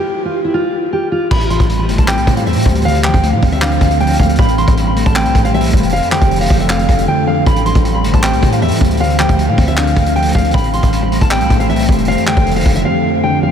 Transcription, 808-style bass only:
1.31 A1
1.60 A1
1.89 G1
1.98 A1
2.17 C2
2.27 A2
2.46 E2
2.56 A2
2.66 D2
3.14 D2
3.33 A2
3.43 D2
3.81 D2
4.20 D2
4.39 A1
4.68 A1
5.06 A1
5.25 C2
5.35 A1
5.54 B1
5.73 F1
6.22 F1
6.50 F1
6.89 F1
7.46 A1
7.75 A1
8.04 G1
8.14 A1
8.33 C2
8.43 A2
8.62 E2
8.71 A2
8.81 D2
9.29 D2
9.48 A2
9.58 D2
9.97 D2
10.35 D2
10.54 A1
10.83 A1
11.21 A1
11.41 C2
11.50 A1
11.69 B1
11.89 F1
12.37 F1
12.66 F1

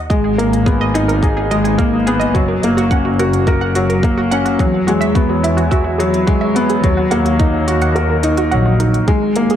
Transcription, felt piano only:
0.10 G#3
0.38 A#3
0.67 B3
0.95 D#4
1.22 G#4
1.51 G#3
1.79 A#3
2.08 B3
2.36 F#3
2.64 A#3
2.92 C#4
3.19 F#4
3.47 A#4
3.76 F#3
4.04 A#3
4.32 C#4
4.60 F#3
4.88 G#3
5.16 B3
5.43 E4
5.71 F#4
5.99 F#3
6.28 G#3
6.56 B3
6.84 F#3
7.12 A#3
7.40 D#4
7.68 F#4
7.95 A#4
8.24 D#4
8.52 F#3
8.80 D#4
9.08 G#3
9.37 A#3

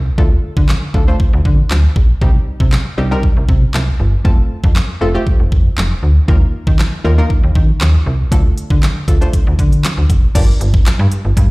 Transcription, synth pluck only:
0.18 A3 D4 F4 A4
0.94 A3 D4 F4 A4
1.08 A3 D4 F4 C5
2.21 G3 C4 D#4 G4
2.98 G3 C4 D#4 G4
3.11 G3 C4 D#4 A#4
4.24 A3 C4 F4 A4
5.01 A3 C4 F4 A4
5.14 A3 C4 F4 G4
6.28 A#3 D#4 F4 A#4
7.04 A#3 D#4 F4 A#4
7.18 A#3 D#4 F4 A#4
8.31 A3 D4 F4 A4
9.08 A3 D4 F4 A4
9.21 A3 D4 F4 C5
10.35 D4 F4 G4 A#4 D5

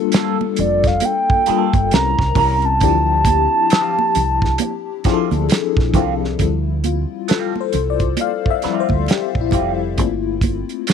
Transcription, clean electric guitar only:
0.14 A#3 F4 A4
1.03 muted clean electric guitar stroke
1.47 A#3 F4 A4
2.37 C#4 E4 A#4
3.72 G3 C4 F4
4.61 muted clean electric guitar stroke
5.05 G3 C4 F4
5.95 G3 C4 F4
7.28 G3 C4 F4
8.20 muted clean electric guitar stroke
8.63 G3 C4 F4
9.52 G3 C4 F4
10.88 A#3 C4

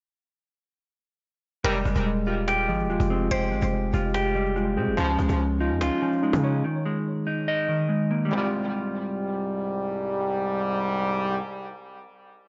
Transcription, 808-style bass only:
1.64 F1
1.85 F1
1.96 D#1
2.69 G#1
2.84 D#1
3.00 F1
3.31 F1
3.52 G#1
3.62 F1
3.94 F1
4.77 C3
4.87 F1
4.98 C#2
5.19 C#2
5.29 C#2
5.71 F2
5.81 C#2
6.33 C#3

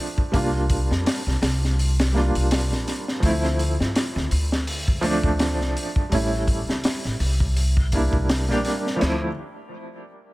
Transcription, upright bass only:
0.34 C2
0.90 F2
1.27 C2
1.42 C2
2.35 C2
2.71 A#1
3.23 D2
3.80 G2
4.16 D2
4.32 D2
5.24 D2
5.60 C2
6.12 A1
6.69 C#2
7.05 A1
7.20 C2
8.13 C2
8.49 A#1
9.02 D2

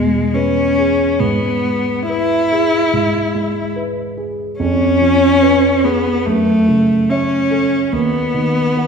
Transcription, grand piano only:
Already playing: E2 B2 G#4 B4
0.35 B4
0.78 G#4
1.20 G#2
1.64 G#3
2.09 B4
2.52 G#4
2.93 G#2
3.35 G#3
3.76 B4
4.17 G#4
4.60 F2
5.01 F3
5.42 B4 C#5
5.84 G#4
6.26 F#2
6.68 C#3
7.11 C#5 E5
7.51 A4
7.92 D#2
8.34 D#3
8.77 B4 F#5

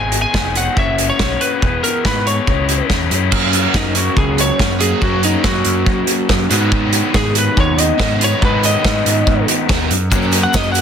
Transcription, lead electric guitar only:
Already playing: G#5
0.22 G#5
0.57 F#5
0.78 E5
1.10 C#5
1.41 B4
1.83 A#4
2.06 B4
2.27 C#5
3.76 D#4
3.97 F#4
4.18 G#4
4.41 C#5
4.81 G#4
5.03 F#4
5.25 D#4
5.45 F#4
7.16 G#4
7.38 B4
7.60 C#5
7.80 D#5
8.24 C#5
8.45 B4
8.65 D#5
10.43 F#5
10.56 D#5
10.72 F#5

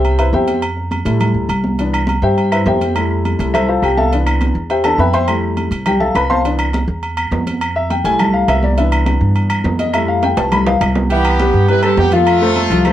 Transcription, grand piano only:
Already playing: G4 C5 E5 G5
0.19 E4 B4 C5 E5
0.33 G4 C5 E5 G5
1.05 G3 A3 E4
1.78 E3 B3 D4
2.23 G4 C5 E5 G5
2.52 E4 B4 C5 E5
2.67 G4 C5 E5 G5
2.95 G3 A3 E4
3.39 G3 A3 E4
3.54 E4 A4 C5 E5
3.68 F4 A4 C5 F5
3.83 G4 G5
3.97 A4 E5 F5 A5
4.11 E3 B3 D4
4.70 G4 C5 E5 G5
4.84 E3 B3 D4 A4 A5
4.99 B4 E5 G5 B5
5.14 C5 E5 G5 C6
5.28 G3 A3 E4
5.86 G4 G5
6.00 A4 E5 F5 A5
6.15 B4 B5
6.30 C5 F5 A5 C6
6.43 E3 B3 D4
7.76 E5
7.90 G5
8.05 G3 A3 E4 G#5
8.19 A5
8.33 F5
8.49 E5
8.64 D5
8.77 E3 B3 D4 E5
9.79 D#5
9.94 G3 A3 E4 E5
10.08 F5
10.24 G5
10.37 A5
10.52 G3 A3 E4 B5
10.67 F5
11.11 E3 E4 E5
11.40 G3 G4 B4
11.69 G3 G4 B4
11.84 G3 G4 B4
12.13 F3 F4 F5
12.42 A3 A4 C5
12.71 F3 F4 F5
12.86 A3 A4 C5

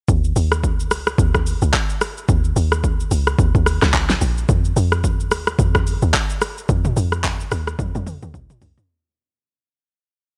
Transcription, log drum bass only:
0.09 D#2
0.36 D#2
0.91 C#2
1.18 D#2
1.62 C#2
2.29 D#2
2.56 D#2
3.11 C#2
3.39 D#2
3.55 D#2
3.82 C#2
4.21 A#1
4.49 F2
4.76 F2
5.31 D#2
5.59 F2
6.02 D#2
6.69 F2
6.97 F2
7.52 D#2
7.79 F2
7.95 F2
8.23 D#2
8.34 C#2
8.62 C2

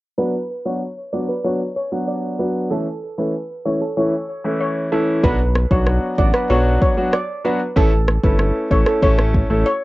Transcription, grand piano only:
0.18 F#3 B3 D4 F#4
0.65 F#3 B3 D4 F#4
1.13 F#3 B3 D4 F#4
1.44 F#3 B3 D4 F#4
1.92 F#3 B3 D4 F#4
2.39 F#3 B3 D4 F#4
2.70 E3 A3 C#4 E4
3.18 E3 A3 C#4 E4
3.65 E3 A3 C#4 E4
3.97 E3 A3 C#4 E4
4.44 E3 A3 C#4 E4
4.92 E3 A3 C#4 E4
5.23 F#3 B3 D4 F#4
5.71 F#3 B3 D4 F#4
6.18 F#3 B3 D4 F#4
6.50 F#3 B3 D4 F#4
6.97 F#3 B3 D4 F#4
7.45 F#3 B3 D4 F#4
7.76 A3 C#4 E4 A4
8.23 A3 C#4 E4 A4
8.71 A3 C#4 E4 A4
9.02 A3 C#4 E4 A4
9.50 A3 C#4 E4 A4

